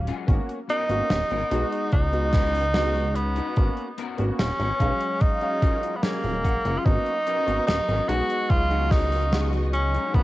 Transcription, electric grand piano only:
Already playing: F#3 G#3 C#4 F5
0.27 A#3 B3 C#4 F#4
0.89 A#3 B3 C#4 F#4
1.51 G#3 B3 D#4 F#4
2.12 G#3 B3 D#4 F#4
2.74 G#3 B3 D#4 F#4
3.56 A#3 B3 C#4 F#4
4.17 A#3 B3 C#4 F#4
4.79 F#3 G#3 C#4 F5
5.41 F#3 G#3 C#4 F5
6.02 F#3 G#3 C#4
6.84 A#3 B3 C#4 F#4
7.46 A#3 B3 C#4 F#4
8.08 G#3 B3 D#4 F#4
8.70 G#3 B3 D#4 F#4
9.31 G#3 B3 D#4 F#4
10.14 A#3 B3 C#4 F#4

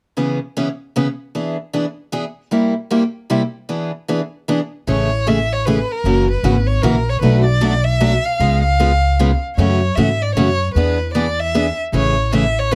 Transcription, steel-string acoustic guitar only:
0.17 C#3 E3 B3 C#4 G#4
0.57 C#3 E3 B3 C#4 G#4
0.96 C#3 E3 B3 C#4 G#4
1.35 E3 B3 D4 G#4
1.73 E3 B3 D4 G#4
2.12 E3 B3 D4 G#4
2.51 C3 G3 A#3 E4 G4
2.90 C3 G3 A#3 E4 G4
3.30 C3 G3 A#3 E4 G4
3.69 E3 B3 D4 G#4
4.08 E3 B3 D4 G#4
4.48 E3 B3 D4 G#4
4.87 C#3 E3 A3 C#4 G#4
5.27 C#3 E3 A3 C#4 G#4
5.67 C#3 E3 A3 C#4 G#4
6.05 C#3 E3 A#3 C#4 F#4
6.44 C#3 E3 A#3 C#4 F#4
6.83 C#3 E3 A#3 C#4 F#4
7.22 B2 F#3 A3 D4 F#4
7.61 B2 F#3 A3 D4 F#4
8.00 B2 F#3 A3 D4 F#4
8.40 C#3 G#3 B3 F4 G#4
8.80 C#3 G#3 B3 F4 G#4
9.19 C#3 G#3 B3 F4 G#4
9.58 C#3 E3 A3 C#4 F#4
9.97 C#3 E3 A3 C#4 F#4
10.37 C#3 E3 A3 C#4 F#4
10.76 E3 B3 D4 G#4
11.15 E3 B3 D4 G#4
11.55 E3 B3 D4 G#4
11.93 C#3 E3 A3 C#4 G#4
12.32 C#3 E3 A3 C#4 G#4
12.71 C#3

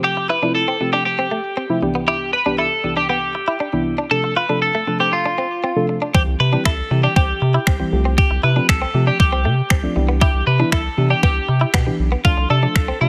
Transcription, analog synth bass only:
6.15 C2
6.27 C2
6.40 C3
6.66 C2
6.91 C3
7.16 C2
7.42 C3
7.67 C2
7.93 C2
8.31 C2
8.44 C3
8.69 C2
8.94 C3
9.20 C2
9.45 C3
9.71 C2
9.96 C2
10.34 C2
10.47 C3
10.72 C2
10.98 C3
11.23 C2
11.49 C3
11.74 B2
11.99 B1
12.25 C2
12.38 C2
12.50 C3
12.76 C2
13.01 C3

